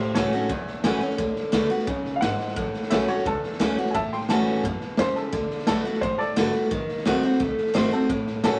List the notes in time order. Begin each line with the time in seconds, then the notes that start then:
Already playing: A2 G4 C5
0.14 C#2 E3 A3 C#4 F#4 A4 C#5, snare, hi-hat pedal
0.32 C#4 F#4, snare
0.41 snare
0.49 B1 E2, kick, snare
0.67 muted upright bass stroke, snare
0.84 A1 E3 A3 C#4 F#4, snare, hi-hat pedal
1.01 C#4 F#4, muted upright bass stroke, snare
1.10 snare
1.18 D2 D3, kick, snare
1.36 muted upright bass stroke, snare
1.52 C#2 D3 A3 B3 F#4, snare, hi-hat pedal
1.70 B3 F#4, snare
1.79 snare
1.87 B1 C#3, kick, snare
2.05 muted upright bass stroke, snare
2.16 F5
2.21 G#1 G#2 F#5, snare, hi-hat pedal
2.39 muted upright bass stroke, snare
2.48 snare
2.56 A1 A2, kick, snare
2.74 muted upright bass stroke, snare
2.83 snare
2.90 B1 E3 A3 C#4 F#4 E5, snare, hi-hat pedal
3.08 C#4 F#4 C#5, muted upright bass stroke, snare
3.18 snare
3.26 C#2 E2 A4, kick, snare
3.43 muted upright bass stroke, snare
3.52 snare
3.60 D2 E3 A3 C#4 F#4, snare, hi-hat pedal
3.78 C#4 F#4, muted upright bass stroke, snare
3.86 snare
3.91 E2 A2 E5 G#5, kick, snare
3.95 A5
4.11 G5 C6, muted upright bass stroke, snare
4.21 snare
4.28 A2 E3 A3 C#4 F#4 A5, snare, hi-hat pedal
4.46 snare
4.55 snare
4.63 F#2 B2, kick, snare
4.81 muted upright bass stroke, snare
4.97 E2 C#3 C5, snare, hi-hat pedal
5.15 A4, muted upright bass stroke, snare
5.33 D2 D3, kick, snare
5.50 snare
5.59 snare
5.67 B1 D3 A3 B3 F#4 A4, snare, hi-hat pedal
5.85 B3 F#4, muted upright bass stroke, snare
5.93 snare
6.01 A1 A2 C5, kick, snare
6.18 A4 D5, muted upright bass stroke, snare
6.36 G#1 D3 A3 B3 F#4, snare, hi-hat pedal
6.53 B3 F#4, snare
6.63 snare
6.71 A1 D#3, kick, snare
6.89 muted upright bass stroke, snare
6.98 snare
7.05 B1 D#3 A3 C4 F#4, snare, hi-hat pedal
7.23 C4 F#4, muted upright bass stroke, snare
7.32 snare
7.40 C2 A3, kick, snare
7.58 muted upright bass stroke, snare
7.67 snare
7.74 G#1 D#3 A3 C4 F#4 C5, snare, hi-hat pedal
7.91 C4 F#4 A4, muted upright bass stroke, snare
8.01 snare
8.09 A2, kick, snare
8.27 snare
8.44 C#2 E3 A3 C#4 F#4 A4, snare, hi-hat pedal